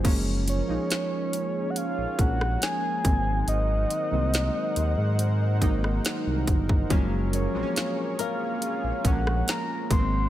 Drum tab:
CC |x---------------|----------------|----------------|
HH |x-x-x-x-x-x-x-x-|x-x-x-x-x-x-x-x-|x-x-x-x-x-x-x-x-|
SD |----o------ro---|----o------ro---|----o------ro---|
BD |o---------o---o-|----------o---oo|o---------o---o-|